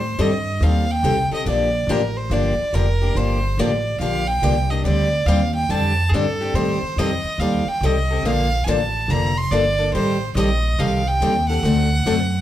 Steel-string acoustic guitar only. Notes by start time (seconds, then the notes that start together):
0.19 D#3 G3 C4 G4 A4
0.62 D#3 G3 C4 G4 A4
1.04 D#3 G3 C4 G4 A4
1.31 C4 G4 A4
1.46 D3 F3 A#3 D4 G4
1.89 D3 F3 A#3 D4 G4
2.31 D3 F3 A#3 D4 G4
2.74 D3 F3 A#3 D4 G4
3.02 A#3 D4 G4
3.16 D3 F3 A#3 D4 G4
3.59 D3 F3 A#3 D4 G4
4.01 D3 F3 A#3 D4 G4
4.43 D3 F3 A#3 D4 G4
4.71 A#3 D4 G4
4.85 D3 G3 C4 D4 G4
5.28 D3 G3 C4 D4 G4
5.70 D3 G3 C4 D4 G4
6.14 D3 G3 C4 D4 G4
6.41 C4 D4 G4
6.55 D#3 G3 C4 G4 A4
6.99 D#3 G3 C4 G4 A4
7.40 D#3 G3 C4 G4 A4
7.83 D#3 G3 C4 G4 A4
8.11 C4 G4 A4
8.25 D3 F3 A#3 D4 A4
8.67 D3 F3 A#3 D4 A4
9.10 D3 F3 A#3 D4 A4
9.52 D3 F3 A#3 D4 A4
9.79 A#3 D4 A4
9.95 D#3 G3 C4 G4 A4
10.37 D#3 G3 C4 G4 A4
10.79 D#3 G3 C4 G4 A4
11.22 D#3 G3 C4 G4 A4
11.50 C4 G4 A4
11.64 D3 A3 C4 F#4 A4
12.06 D3 A3 C4 F#4 A4